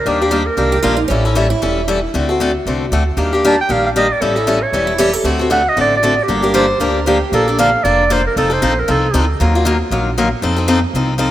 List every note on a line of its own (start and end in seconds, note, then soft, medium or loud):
0.00 0.10 A#4 medium
0.06 0.47 D#2 medium
0.06 0.20 D#3 medium
0.06 0.21 G3 medium
0.06 0.21 A#3 medium
0.06 0.21 D4 medium
0.06 0.20 G4 medium
0.06 0.48 G4 medium
0.22 0.30 A#3 soft
0.22 0.30 D4 soft
0.22 0.31 G4 soft
0.31 0.42 D#3 medium
0.31 0.42 G3 medium
0.31 0.42 A#3 medium
0.31 0.42 D4 medium
0.31 0.42 G4 medium
0.46 0.99 A#4 medium
0.57 0.80 C2 medium
0.57 0.76 D#3 soft
0.57 0.76 G3 medium
0.57 0.76 A#3 medium
0.57 0.76 D4 medium
0.57 0.76 G4 medium
0.72 0.82 G4 medium
0.83 1.06 A#1 medium
0.83 0.94 D#3 medium
0.83 0.94 G3 medium
0.83 0.94 A#3 medium
0.83 0.94 D4 medium
0.83 0.99 F4 medium
0.83 0.94 G4 medium
0.97 1.02 D#4 medium
1.08 1.52 A1 medium
1.08 1.24 E3 soft
1.08 1.24 G3 medium
1.08 1.50 C#4 medium
1.08 1.25 C#4 medium
1.08 1.25 E4 medium
1.08 1.24 A4 medium
1.25 1.35 C#4 soft
1.25 1.35 E4 soft
1.25 1.35 A4 medium
1.35 1.46 E3 medium
1.35 1.46 G3 medium
1.35 1.46 C#4 medium
1.35 1.47 E4 medium
1.35 1.47 A4 medium
1.50 1.99 E4 medium
1.62 2.04 E1 medium
1.62 1.80 E3 soft
1.62 1.80 G3 soft
1.62 1.81 C#4 medium
1.62 1.81 E4 medium
1.62 1.81 A4 medium
1.88 1.98 E3 medium
1.88 1.98 G3 medium
1.88 1.98 C#4 medium
1.88 1.99 E4 medium
1.88 1.99 A4 medium
2.14 2.55 D2 medium
2.14 2.28 D3 medium
2.14 2.29 A3 medium
2.14 2.29 C4 medium
2.14 2.29 F#4 medium
2.14 2.28 A4 medium
2.29 2.40 C4 soft
2.29 2.40 F#4 soft
2.29 2.39 A4 soft
2.40 2.50 D3 medium
2.40 2.51 A3 medium
2.40 2.51 C4 medium
2.40 2.51 F#4 medium
2.40 2.51 A4 medium
2.66 2.88 C2 medium
2.66 2.85 D3 soft
2.66 2.85 A3 medium
2.66 2.85 C4 medium
2.66 2.85 F#4 medium
2.66 2.85 A4 medium
2.91 3.14 D2 medium
2.91 3.02 D3 medium
2.91 3.03 A3 medium
2.91 3.03 C4 medium
2.91 3.03 F#4 medium
2.91 3.03 A4 medium
3.17 3.58 D#2 medium
3.17 3.32 D#3 soft
3.17 3.32 G3 medium
3.17 3.32 A#3 medium
3.17 3.32 D4 medium
3.17 3.32 G4 medium
3.33 3.43 A#3 soft
3.33 3.44 D4 soft
3.33 3.43 G4 soft
3.45 3.54 D#3 medium
3.45 3.54 G3 medium
3.45 3.55 A#3 medium
3.45 3.55 D4 medium
3.45 3.55 G4 medium
3.45 3.59 A5 medium
3.61 3.74 G5 medium
3.69 4.11 A#1 medium
3.69 3.88 D#3 soft
3.69 3.88 G3 soft
3.69 3.88 A#3 medium
3.69 3.88 D4 medium
3.69 3.88 G4 medium
3.69 3.86 F5 medium
3.86 3.91 F5 medium
3.96 4.06 D#3 medium
3.96 4.06 G3 medium
3.96 4.06 A#3 medium
3.96 4.06 D4 medium
3.96 4.06 G4 medium
3.96 4.14 D#5 medium
4.13 4.23 D5 medium
4.21 4.63 A1 medium
4.21 4.36 E3 medium
4.21 4.36 G3 medium
4.21 4.36 C#4 medium
4.21 4.35 E4 medium
4.21 4.35 A4 medium
4.21 4.64 A4 medium
4.36 4.46 C#4 soft
4.36 4.47 E4 soft
4.36 4.47 A4 soft
4.47 4.58 E3 medium
4.47 4.58 G3 medium
4.47 4.58 C#4 medium
4.47 4.58 E4 medium
4.47 4.58 A4 medium
4.63 5.14 C#5 medium
4.72 5.14 E1 medium
4.72 4.92 E3 soft
4.72 4.92 G3 medium
4.72 4.92 C#4 medium
4.72 4.92 E4 medium
4.72 4.92 A4 medium
4.87 4.98 E4 medium
4.98 5.10 E3 medium
4.98 5.09 G3 medium
4.98 5.10 C#4 medium
4.98 5.10 E4 medium
4.98 5.13 G4 medium
4.98 5.10 A4 medium
5.13 5.25 A4 medium
5.24 5.66 D2 medium
5.24 5.39 D3 medium
5.24 5.39 A3 medium
5.24 5.39 C4 medium
5.24 5.39 F#4 medium
5.24 5.46 F#4 medium
5.24 5.38 A4 medium
5.39 5.50 C4 soft
5.39 5.49 F#4 soft
5.39 5.49 A4 soft
5.50 5.61 D3 medium
5.50 5.61 A3 medium
5.50 5.61 C4 medium
5.50 5.61 F#4 medium
5.50 5.61 A4 medium
5.50 5.70 F#5 medium
5.69 5.78 D#5 medium
5.77 6.18 A1 medium
5.77 5.95 D3 medium
5.77 5.95 A3 soft
5.77 5.95 C4 medium
5.77 5.95 F#4 medium
5.77 5.96 A4 medium
5.81 5.93 D5 medium
5.97 6.25 D5 medium
6.03 6.13 D3 medium
6.03 6.13 A3 medium
6.03 6.14 C4 medium
6.03 6.14 F#4 medium
6.03 6.14 A4 medium
6.23 7.09 G4 medium
6.28 6.70 G1 medium
6.28 6.43 D3 medium
6.28 6.43 F3 medium
6.28 6.43 A#3 medium
6.28 6.42 D4 medium
6.28 6.41 G4 medium
6.42 6.53 A#3 soft
6.42 6.53 D4 soft
6.42 6.53 G4 soft
6.42 6.54 A#4 medium
6.54 6.65 D3 medium
6.54 6.65 F3 medium
6.54 6.65 A#3 medium
6.54 6.65 D4 medium
6.54 6.65 G4 medium
6.54 6.80 C5 medium
6.79 7.21 D2 medium
6.79 6.99 D3 soft
6.79 6.99 F3 medium
6.79 6.99 A#3 medium
6.79 6.99 D4 medium
6.79 6.99 G4 medium
6.79 7.05 A#4 medium
7.06 7.17 D3 medium
7.06 7.17 F3 medium
7.06 7.17 A#3 medium
7.06 7.17 D4 medium
7.06 7.31 G4 medium
7.06 7.17 G4 medium
7.32 7.74 A#1 medium
7.32 7.47 D3 medium
7.32 7.47 F3 medium
7.32 7.47 A#3 medium
7.32 7.47 D4 medium
7.32 7.47 A4 medium
7.32 7.57 A4 medium
7.48 7.58 A#3 soft
7.48 7.58 D4 soft
7.48 7.58 A4 medium
7.59 7.69 D3 medium
7.59 7.69 F3 medium
7.59 7.69 A#3 medium
7.59 7.69 D4 medium
7.59 7.69 A4 medium
7.59 7.85 F5 medium
7.84 8.25 F1 medium
7.84 8.03 D3 medium
7.84 8.03 F3 medium
7.84 8.03 A#3 medium
7.84 8.03 D4 medium
7.84 8.03 A4 medium
7.84 8.14 D5 medium
8.10 8.20 D3 medium
8.10 8.21 F3 medium
8.10 8.20 A#3 medium
8.10 8.21 D4 medium
8.10 8.21 A4 medium
8.10 8.26 C5 medium
8.27 8.36 A#4 medium
8.36 8.57 F1 medium
8.36 8.51 F3 medium
8.36 8.50 C4 medium
8.36 8.50 D#4 medium
8.36 8.55 A4 medium
8.36 8.49 A4 medium
8.50 8.61 C4 soft
8.50 8.61 D#4 medium
8.50 8.61 A4 medium
8.50 8.81 C5 medium
8.62 8.84 A#1 medium
8.62 8.72 F3 medium
8.62 8.72 C4 medium
8.62 8.72 D#4 medium
8.62 8.73 A4 medium
8.80 8.89 A#4 medium
8.88 9.10 C2 medium
8.88 9.06 F3 medium
8.88 9.06 C4 medium
8.88 9.06 D#4 medium
8.88 9.06 A4 medium
8.88 9.27 A4 medium
9.14 9.36 D2 medium
9.14 9.24 F3 medium
9.14 9.24 C4 medium
9.14 9.24 D#4 medium
9.14 9.25 A4 medium
9.40 9.81 D#2 medium
9.40 9.54 D#3 medium
9.40 9.54 F#3 medium
9.40 9.54 A#3 medium
9.40 9.54 F4 medium
9.55 9.65 F#3 soft
9.55 9.65 A#3 medium
9.55 9.65 F4 medium
9.65 9.75 D#3 medium
9.65 9.76 F#3 medium
9.65 9.76 A#3 medium
9.65 9.76 F4 medium
9.91 10.32 A#1 medium
9.91 10.09 D#3 medium
9.91 10.10 F#3 medium
9.91 10.10 A#3 medium
9.91 10.10 F4 medium
10.18 10.27 D#3 medium
10.18 10.28 F#3 medium
10.18 10.28 A#3 medium
10.18 10.28 F4 medium
10.42 10.83 F2 medium
10.42 10.57 F3 medium
10.42 10.57 C4 medium
10.42 10.57 D#4 medium
10.42 10.55 A4 medium
10.56 10.67 C4 soft
10.56 10.67 D#4 soft
10.56 10.67 A4 medium
10.68 10.78 F3 medium
10.68 10.78 C4 medium
10.68 10.79 D#4 medium
10.68 10.79 A4 medium
10.93 11.31 C2 medium
10.93 11.13 F3 medium
10.93 11.13 C4 medium
10.93 11.13 D#4 medium
10.93 11.13 A4 medium
11.18 11.29 F3 medium
11.18 11.30 C4 medium
11.18 11.30 D#4 medium
11.18 11.30 A4 medium